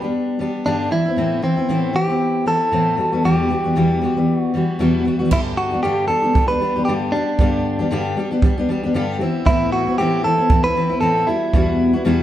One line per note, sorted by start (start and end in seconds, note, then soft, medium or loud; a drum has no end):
0.02 0.38 G3 soft
0.02 0.39 B3 soft
0.02 0.40 D4 soft
0.02 0.39 G4 soft
0.39 0.65 G3 medium
0.39 0.66 B3 medium
0.39 0.66 D4 medium
0.39 0.66 G4 medium
0.66 0.91 G2 medium
0.66 0.91 D3 medium
0.66 0.90 G3 medium
0.66 0.92 B3 medium
0.66 0.92 D4 medium
0.66 0.92 G4 medium
0.91 1.05 E3 medium
0.91 1.06 B3 medium
0.91 1.06 C4 medium
0.91 1.43 E4 medium
0.91 1.05 E4 medium
1.06 1.17 B3 soft
1.06 1.17 C4 soft
1.06 1.17 E4 soft
1.16 1.43 A2 medium
1.16 1.41 E3 medium
1.16 1.43 B3 medium
1.16 1.42 C4 medium
1.16 1.44 E4 medium
1.42 1.57 E3 medium
1.42 1.57 B3 medium
1.42 1.97 C4 medium
1.42 1.58 C4 medium
1.42 1.56 E4 medium
1.57 1.69 B3 soft
1.57 1.69 C4 soft
1.57 1.69 E4 medium
1.69 1.95 A2 medium
1.69 1.92 E3 medium
1.69 1.94 B3 medium
1.69 1.93 C4 medium
1.69 1.95 E4 medium
1.93 2.08 E3 medium
1.93 2.08 B3 medium
1.93 2.09 C4 medium
1.93 2.06 E4 medium
1.93 2.47 G4 loud
2.08 2.46 B3 soft
2.08 2.45 C4 soft
2.08 2.46 E4 soft
2.46 2.71 E3 medium
2.46 2.72 B3 medium
2.46 2.72 C4 medium
2.46 2.73 E4 medium
2.46 3.25 A4 loud
2.72 2.98 A2 medium
2.72 2.96 E3 medium
2.72 2.98 B3 medium
2.72 2.98 C4 medium
2.72 2.99 E4 medium
2.97 3.12 E3 medium
2.97 3.13 G3 medium
2.97 3.12 B3 medium
2.97 3.11 F#4 medium
3.12 3.24 E3 soft
3.12 3.24 G3 soft
3.12 3.25 B3 soft
3.12 3.24 F#4 medium
3.24 3.50 E2 medium
3.24 3.50 B2 medium
3.24 3.47 E3 medium
3.24 3.49 G3 medium
3.24 3.50 B3 medium
3.24 3.51 F#4 medium
3.24 4.38 G4 medium
3.49 3.64 E3 medium
3.49 3.65 G3 medium
3.49 3.64 B3 medium
3.49 3.63 F#4 medium
3.64 3.75 E3 soft
3.64 3.76 G3 soft
3.64 3.76 B3 soft
3.64 3.76 F#4 soft
3.75 4.02 E2 medium
3.75 4.02 B2 medium
3.75 4.00 E3 medium
3.75 4.02 G3 medium
3.75 4.02 B3 medium
3.75 4.03 F#4 medium
4.01 4.16 E3 medium
4.01 4.16 G3 medium
4.01 4.16 B3 medium
4.01 4.18 F#4 medium
4.17 4.53 E3 soft
4.17 4.54 G3 soft
4.17 4.54 B3 medium
4.38 5.02 F#4 medium
4.54 4.79 E3 medium
4.54 4.79 G3 medium
4.54 4.79 B3 medium
4.54 4.80 F#4 medium
4.79 5.05 E2 medium
4.79 5.05 B2 medium
4.79 5.04 E3 medium
4.79 5.05 G3 medium
4.79 5.06 B3 medium
4.79 5.06 F#4 medium
5.05 5.20 E3 medium
5.05 5.20 G3 medium
5.05 5.19 B3 medium
5.05 5.18 F#4 medium
5.19 5.31 E3 soft
5.19 5.31 G3 soft
5.19 5.31 B3 medium
5.19 5.31 F#4 medium
5.31 5.72 G2 medium
5.31 5.72 D3 medium
5.31 5.72 G3 medium
5.31 5.71 B3 medium
5.31 5.71 D4 medium
5.31 5.40 E4 medium
5.31 5.69 G4 medium
5.31 kick medium
5.31 crash medium
5.57 5.82 F#4 medium
5.71 5.83 G3 soft
5.71 5.83 B3 soft
5.71 5.83 D4 soft
5.71 5.83 G4 soft
5.83 6.09 G2 medium
5.83 6.09 D3 medium
5.83 6.07 G3 medium
5.83 6.08 B3 medium
5.83 6.09 D4 medium
5.83 6.07 G4 medium
5.83 6.10 G4 medium
6.08 6.23 G3 soft
6.08 6.23 B3 medium
6.08 6.23 D4 medium
6.08 6.21 G4 medium
6.08 6.48 A4 medium
6.22 6.32 G3 soft
6.22 6.33 B3 soft
6.22 6.34 D4 soft
6.22 6.35 G4 medium
6.33 6.49 G3 medium
6.33 6.49 B3 soft
6.33 6.49 D4 medium
6.33 6.47 G4 medium
6.33 kick loud
6.48 6.59 G3 soft
6.48 6.60 B3 soft
6.48 6.61 D4 soft
6.48 6.61 G4 medium
6.48 6.85 B4 loud
6.60 6.75 G3 medium
6.60 6.76 B3 medium
6.60 6.76 D4 medium
6.60 6.75 G4 medium
6.76 6.88 G3 soft
6.76 6.88 B3 soft
6.76 6.88 D4 soft
6.76 6.87 G4 soft
6.85 7.13 G2 medium
6.85 7.14 D3 medium
6.85 7.12 G3 medium
6.85 6.92 G4 medium
6.89 7.13 B3 medium
6.89 7.14 D4 medium
6.89 7.14 G4 medium
7.12 7.39 G3 medium
7.12 7.39 B3 medium
7.12 7.86 D4 medium
7.12 7.40 D4 medium
7.16 7.40 G4 medium
7.39 7.79 G2 medium
7.39 7.80 D3 medium
7.39 7.80 G3 medium
7.39 7.79 B3 medium
7.39 7.79 D4 medium
7.39 7.78 G4 medium
7.39 kick loud
7.79 7.91 G3 soft
7.79 7.91 B3 soft
7.79 7.91 D4 medium
7.79 7.91 G4 medium
7.91 8.17 G2 medium
7.91 8.17 D3 medium
7.91 8.16 G3 medium
7.91 8.16 B3 medium
7.91 8.17 D4 medium
7.91 8.18 G4 medium
8.17 8.31 G3 medium
8.17 8.31 B3 medium
8.17 8.31 D4 medium
8.17 8.29 G4 medium
8.31 8.41 G3 soft
8.31 8.43 B3 medium
8.31 8.43 D4 medium
8.31 8.42 G4 medium
8.42 8.57 G3 medium
8.42 8.57 B3 medium
8.42 8.58 D4 medium
8.42 8.56 G4 medium
8.42 kick loud
8.58 8.68 G3 soft
8.58 8.69 B3 medium
8.58 8.70 D4 medium
8.58 8.69 G4 medium
8.69 8.83 G3 medium
8.69 8.84 B3 medium
8.69 8.84 D4 medium
8.69 8.82 G4 medium
8.83 8.94 G3 soft
8.83 8.95 B3 soft
8.83 8.95 D4 medium
8.83 8.95 G4 medium
8.94 9.20 G2 medium
8.94 9.20 D3 medium
8.94 9.20 G3 medium
8.94 9.21 B3 medium
8.94 9.21 D4 medium
8.94 9.21 G4 medium
9.20 9.46 E3 medium
9.20 9.47 B3 medium
9.20 9.47 C4 medium
9.20 9.47 E4 medium
9.46 9.87 A2 medium
9.46 9.87 E3 medium
9.46 9.87 B3 medium
9.46 9.87 C4 medium
9.46 9.72 E4 medium
9.46 9.86 E4 medium
9.46 kick medium
9.72 9.98 F#4 medium
9.87 9.99 B3 soft
9.87 9.98 C4 soft
9.87 9.98 E4 soft
9.98 10.24 A2 medium
9.98 10.24 E3 medium
9.98 10.25 B3 medium
9.98 10.25 C4 medium
9.98 10.25 E4 medium
9.98 10.24 G4 medium
10.24 10.39 E3 medium
10.24 10.38 B3 medium
10.24 10.39 C4 medium
10.24 10.37 E4 medium
10.24 10.63 A4 medium
10.38 10.50 B3 soft
10.38 10.50 C4 soft
10.38 10.50 E4 medium
10.50 10.64 E3 medium
10.50 10.65 B3 medium
10.50 10.65 C4 medium
10.50 10.63 E4 medium
10.50 kick loud
10.64 10.77 B3 soft
10.64 10.76 C4 soft
10.64 10.76 E4 medium
10.64 10.99 B4 loud
10.76 10.90 E3 medium
10.76 10.90 B3 medium
10.76 10.91 C4 medium
10.76 10.88 E4 medium
10.90 11.02 B3 soft
10.90 11.01 C4 soft
10.90 11.01 E4 medium
11.01 11.27 A2 medium
11.01 11.27 E3 medium
11.01 11.27 B3 medium
11.01 11.27 C4 medium
11.01 11.28 E4 medium
11.01 11.28 A4 medium
11.27 11.53 G3 medium
11.27 11.53 B3 medium
11.27 12.01 E4 medium
11.27 11.54 E4 medium
11.27 11.54 F#4 medium
11.53 11.94 E2 medium
11.53 11.94 B2 medium
11.53 11.94 G3 medium
11.53 11.94 B3 medium
11.53 11.93 E4 medium
11.53 11.92 F#4 medium
11.53 kick loud
11.93 12.04 G3 soft
11.93 12.05 B3 soft
11.93 12.05 E4 medium
11.93 12.05 F#4 medium
12.05 12.23 E2 medium
12.05 12.23 B2 medium
12.05 12.23 G3 medium
12.05 12.23 B3 medium
12.05 12.23 E4 medium
12.05 12.23 F#4 medium